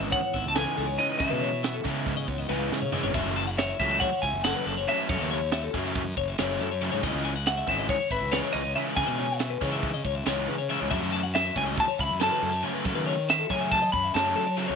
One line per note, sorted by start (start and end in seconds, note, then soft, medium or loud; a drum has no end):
0.00 0.10 G#1 loud
0.00 0.20 C#3 medium
0.00 0.19 E3 medium
0.00 1.40 E3 medium
0.00 0.19 G#3 medium
0.00 0.34 B3 medium
0.00 0.19 C#4 loud
0.00 0.55 E4 medium
0.00 0.12 D#5 medium
0.11 0.99 G#2 medium
0.11 0.22 C#5 medium
0.11 0.48 F#5 loud
0.11 kick loud
0.11 closed hi-hat loud
0.23 0.34 C#5 medium
0.34 0.44 G#1 medium
0.34 1.19 B3 medium
0.34 0.56 E5 medium
0.34 kick medium
0.34 snare soft
0.34 closed hi-hat medium
0.46 0.64 C#2 medium
0.46 0.55 A5 medium
0.55 0.84 C#3 medium
0.55 0.84 E3 medium
0.55 0.85 G#3 loud
0.55 0.85 C#4 medium
0.55 1.18 D#4 medium
0.55 0.65 A4 medium
0.55 1.00 G#5 loud
0.55 snare loud
0.55 closed hi-hat medium
0.66 0.77 B4 medium
0.77 0.97 C#2 medium
0.77 1.19 G#4 medium
0.77 0.87 A4 medium
0.77 closed hi-hat medium
0.87 1.09 C#5 medium
0.97 1.17 C#3 medium
0.97 1.19 C#3 medium
0.97 1.19 E3 medium
0.97 1.20 G#3 medium
0.97 1.20 C#4 medium
0.97 1.18 D#5 medium
0.97 snare soft
0.97 closed hi-hat medium
1.09 1.20 B4 medium
1.19 1.42 C#3 medium
1.19 1.48 C#3 medium
1.19 1.30 C#3 loud
1.19 1.49 E3 medium
1.19 1.49 G#3 medium
1.19 1.49 C#4 medium
1.19 1.30 G#4 medium
1.19 2.67 E5 medium
1.19 kick loud
1.19 closed hi-hat loud
1.30 1.79 B2 medium
1.30 1.42 B4 medium
1.41 1.84 E3 medium
1.41 1.63 C#5 medium
1.41 closed hi-hat medium
1.63 2.27 B3 medium
1.63 1.74 E5 medium
1.63 snare loud
1.63 closed hi-hat loud
1.74 1.85 A4 medium
1.85 2.23 C#3 medium
1.85 2.14 C#3 medium
1.85 5.09 E3 medium
1.85 2.14 E3 medium
1.85 2.14 G#3 medium
1.85 2.13 C#4 medium
1.85 1.96 C#5 medium
1.85 kick medium
1.85 snare soft
1.85 closed hi-hat medium
1.96 2.17 E5 medium
2.06 2.94 G#2 medium
2.06 kick loud
2.06 snare soft
2.06 closed hi-hat loud
2.17 2.28 D#5 medium
2.28 2.47 C#2 medium
2.28 3.13 B3 medium
2.28 2.38 C#5 medium
2.28 kick medium
2.28 closed hi-hat medium
2.38 2.50 D#5 medium
2.49 2.69 C#2 loud
2.49 2.78 C#3 medium
2.49 2.78 E3 medium
2.49 2.78 G#3 medium
2.49 2.78 C#4 medium
2.49 3.13 E4 medium
2.49 2.71 B4 medium
2.49 high tom medium
2.71 3.00 C#3 medium
2.71 2.82 G#4 medium
2.71 3.13 G#4 medium
2.71 snare medium
2.82 2.92 C#5 medium
2.82 mid tom medium
2.92 3.12 C#3 medium
2.92 3.13 C#3 medium
2.92 3.15 E3 medium
2.92 3.15 G#3 medium
2.92 3.15 C#4 medium
2.92 3.03 E5 medium
2.92 floor tom medium
3.03 3.14 G#1 medium
3.03 3.14 C#5 medium
3.03 floor tom medium
3.14 3.24 F#1 loud
3.14 3.43 C#3 medium
3.14 3.43 F#3 medium
3.14 3.43 A3 loud
3.14 3.44 C#4 loud
3.14 3.36 E5 medium
3.14 kick loud
3.14 crash loud
3.25 3.73 F#1 medium
3.36 3.47 A5 medium
3.36 ride medium
3.47 3.58 F#5 medium
3.58 3.79 C#5 medium
3.58 3.68 E5 medium
3.58 snare loud
3.58 ride loud
3.69 3.91 E5 medium
3.80 3.99 C#2 loud
3.80 4.08 C#3 medium
3.80 4.08 F#3 medium
3.80 4.08 A3 medium
3.80 4.08 C#4 loud
3.80 4.02 E5 medium
3.80 kick medium
3.80 snare soft
3.80 ride medium
3.91 4.01 D#5 medium
4.00 4.12 C#5 medium
4.00 4.21 F#5 loud
4.00 kick loud
4.00 ride loud
4.13 4.24 C#5 medium
4.22 4.33 C#2 medium
4.22 4.45 E5 medium
4.22 4.44 G#5 loud
4.22 kick medium
4.22 snare soft
4.22 ride medium
4.33 4.53 F#1 medium
4.44 4.73 C#3 medium
4.44 4.73 F#3 loud
4.44 4.73 A3 medium
4.44 4.73 C#4 medium
4.44 4.56 A4 medium
4.44 4.89 F#5 loud
4.44 snare loud
4.44 ride loud
4.56 4.67 B4 medium
4.66 4.85 F#1 medium
4.66 4.77 A4 medium
4.66 ride medium
4.78 5.00 C#5 medium
4.88 5.08 C#3 medium
4.88 5.09 F#3 medium
4.88 5.09 A3 loud
4.88 5.10 C#4 medium
4.88 5.09 E5 medium
4.88 ride medium
5.00 5.10 B4 medium
5.09 5.19 F#2 loud
5.09 5.37 C#3 medium
5.09 5.38 F#3 medium
5.09 5.38 A3 medium
5.09 5.38 C#4 loud
5.09 5.20 A4 medium
5.09 5.70 C#5 medium
5.09 kick loud
5.09 ride loud
5.20 5.68 D#2 medium
5.20 5.31 B4 medium
5.31 5.52 C#5 medium
5.31 ride medium
5.52 5.63 E5 medium
5.52 snare loud
5.52 ride loud
5.64 5.74 A4 medium
5.74 6.12 F#2 medium
5.74 6.03 C#3 medium
5.74 6.02 F#3 medium
5.74 6.02 A3 medium
5.74 6.02 C#4 loud
5.74 5.85 C#5 medium
5.74 kick medium
5.74 ride medium
5.85 6.07 E5 medium
5.95 kick loud
5.95 snare soft
5.95 ride loud
6.07 6.17 D#5 medium
6.17 6.36 F#1 medium
6.17 6.28 C#5 medium
6.17 kick medium
6.17 ride medium
6.28 6.39 E5 medium
6.38 6.58 F#1 loud
6.38 6.67 C#3 medium
6.38 6.67 F#3 medium
6.38 6.67 A3 loud
6.38 6.67 C#4 loud
6.38 6.60 C#5 medium
6.38 snare loud
6.38 ride loud
6.60 6.89 F#2 medium
6.60 6.71 A4 medium
6.60 snare soft
6.60 ride medium
6.71 6.82 C#5 medium
6.81 7.01 C#3 medium
6.81 7.03 F#3 medium
6.81 7.03 A3 loud
6.81 7.02 C#4 loud
6.81 6.91 E5 medium
6.81 ride medium
6.92 7.03 G#2 medium
6.92 7.03 C#5 medium
7.03 7.13 C#2 loud
7.03 7.31 C#3 medium
7.03 7.31 E3 loud
7.03 7.31 G#3 medium
7.03 7.31 C#4 loud
7.03 7.24 D#5 medium
7.03 kick loud
7.03 ride loud
7.15 7.62 C#2 loud
7.25 7.35 G#5 medium
7.25 ride medium
7.36 7.47 F#5 medium
7.46 7.56 E5 medium
7.46 7.69 F#5 loud
7.46 snare loud
7.46 ride loud
7.57 7.79 E5 medium
7.67 7.87 G#1 loud
7.67 7.96 C#3 medium
7.67 7.96 E3 medium
7.67 7.96 G#3 medium
7.67 7.96 C#4 loud
7.67 7.90 E5 medium
7.67 kick medium
7.67 ride medium
7.79 7.89 D#5 medium
7.89 7.99 C#5 medium
7.89 8.10 C#5 loud
7.89 kick loud
7.89 snare soft
7.89 ride loud
8.00 8.10 C#5 medium
8.10 8.20 G#1 loud
8.10 8.33 B4 loud
8.10 8.32 E5 medium
8.10 kick medium
8.10 ride medium
8.21 8.40 C#2 medium
8.32 8.60 C#3 medium
8.32 8.60 E3 medium
8.32 8.61 G#3 medium
8.32 8.61 C#4 medium
8.32 8.42 B4 medium
8.32 8.38 C#5 medium
8.32 snare loud
8.32 ride loud
8.43 8.53 C#5 medium
8.53 8.73 C#2 medium
8.53 8.64 B4 medium
8.53 8.75 D#5 medium
8.53 snare soft
8.53 ride medium
8.64 8.86 C#5 medium
8.76 8.96 C#3 medium
8.76 8.96 E3 medium
8.76 8.97 G#3 loud
8.76 8.97 C#4 loud
8.76 8.81 E5 loud
8.76 ride medium
8.86 8.96 B4 medium
8.96 9.25 C#3 medium
8.96 9.07 C#3 loud
8.96 9.25 E3 medium
8.96 9.26 G#3 loud
8.96 9.26 C#4 loud
8.96 9.07 G#4 medium
8.96 9.42 G#5 loud
8.96 kick loud
8.96 ride loud
9.07 9.55 B2 medium
9.07 9.18 B4 medium
9.18 9.39 C#5 medium
9.18 snare soft
9.18 ride medium
9.39 9.51 E5 medium
9.39 snare loud
9.39 ride loud
9.50 9.61 B4 medium
9.61 10.00 C#3 medium
9.61 9.90 C#3 medium
9.61 9.90 E3 medium
9.61 9.90 G#3 loud
9.61 9.89 C#4 medium
9.61 9.72 C#5 medium
9.61 kick medium
9.61 snare soft
9.61 ride medium
9.72 9.94 E5 medium
9.82 kick loud
9.82 ride loud
9.94 10.05 D#5 medium
10.04 10.24 C#2 medium
10.04 10.15 C#5 medium
10.04 kick medium
10.04 ride medium
10.15 10.26 E5 medium
10.26 10.45 C#2 loud
10.26 10.54 C#3 medium
10.26 10.55 E3 medium
10.26 10.55 G#3 loud
10.26 10.55 C#4 medium
10.26 10.48 C#5 medium
10.26 snare loud
10.26 ride medium
10.48 10.77 C#3 medium
10.48 10.58 B4 medium
10.48 snare soft
10.48 ride medium
10.58 10.69 C#5 medium
10.70 10.90 C#3 medium
10.70 10.91 E3 medium
10.70 10.91 G#3 medium
10.70 10.91 C#4 medium
10.70 10.80 E5 medium
10.70 ride medium
10.80 10.90 C#2 medium
10.80 10.90 C#5 medium
10.91 11.01 F#2 loud
10.91 11.19 C#3 loud
10.91 11.19 F#3 loud
10.91 11.19 A3 loud
10.91 11.20 C#4 loud
10.91 11.12 E5 medium
10.91 kick loud
10.91 crash loud
11.03 11.50 F#2 medium
11.12 11.23 A5 medium
11.12 snare soft
11.12 ride medium
11.23 11.34 F#5 medium
11.35 11.45 E5 medium
11.35 11.55 E5 medium
11.35 snare loud
11.35 ride medium
11.46 11.66 E5 medium
11.56 11.75 C#2 loud
11.56 11.84 C#3 medium
11.56 11.84 F#3 medium
11.56 11.84 A3 medium
11.56 11.84 C#4 loud
11.56 11.63 G#5 medium
11.56 kick medium
11.56 ride medium
11.66 11.77 D#5 medium
11.77 11.87 C#5 medium
11.77 11.99 A5 loud
11.77 kick loud
11.77 snare soft
11.77 ride loud
11.88 11.99 C#5 medium
11.99 12.09 C#2 medium
11.99 12.20 E5 medium
11.99 12.22 B5 loud
11.99 kick medium
11.99 snare soft
11.99 ride medium
12.10 12.29 F#2 medium
12.20 12.48 C#3 medium
12.20 12.49 F#3 loud
12.20 12.49 A3 medium
12.20 12.49 C#4 medium
12.20 12.30 A4 medium
12.20 12.62 A5 medium
12.20 snare loud
12.20 ride loud
12.31 12.42 B4 medium
12.42 12.61 F#2 medium
12.42 12.52 A4 medium
12.42 snare soft
12.42 ride medium
12.52 12.74 C#5 medium
12.63 12.83 C#3 medium
12.63 12.84 F#3 loud
12.63 12.85 A3 loud
12.63 12.85 C#4 loud
12.63 snare soft
12.63 ride medium
12.74 12.85 B4 medium
12.85 13.13 C#3 medium
12.85 13.13 F#3 medium
12.85 12.95 F#3 loud
12.85 13.14 A3 medium
12.85 13.14 C#4 loud
12.85 12.95 A4 medium
12.85 kick loud
12.85 ride loud
12.95 13.44 D#3 medium
12.95 13.06 B4 medium
13.06 13.29 C#5 medium
13.06 ride medium
13.29 13.39 E5 medium
13.29 13.51 E5 medium
13.29 snare loud
13.29 ride loud
13.39 13.50 A4 medium
13.50 13.79 C#3 medium
13.50 13.88 F#3 medium
13.50 13.79 F#3 medium
13.50 13.78 A3 medium
13.50 13.78 C#4 loud
13.50 13.61 C#5 medium
13.50 13.71 G#5 medium
13.50 kick medium
13.50 ride medium
13.61 13.82 E5 medium
13.72 13.92 A5 loud
13.72 kick loud
13.72 snare soft
13.72 ride loud
13.82 13.93 D#5 medium
13.92 14.12 F#2 medium
13.92 14.03 C#5 medium
13.92 14.14 B5 loud
13.92 kick medium
13.92 ride medium
14.03 14.14 E5 medium
14.14 14.34 F#2 loud
14.14 14.43 C#3 medium
14.14 14.43 F#3 medium
14.14 14.43 A3 medium
14.14 14.43 C#4 medium
14.14 14.36 C#5 medium
14.14 14.55 A5 medium
14.14 snare loud
14.14 ride loud
14.36 14.65 F#3 medium
14.36 14.47 A4 medium
14.36 ride medium
14.47 14.57 C#5 medium
14.57 14.75 C#3 loud
14.57 14.75 F#3 loud
14.57 14.75 A3 loud
14.57 14.75 C#4 loud
14.57 14.68 E5 medium
14.57 snare soft
14.57 ride medium
14.68 14.75 C#2 medium
14.68 14.75 C#5 medium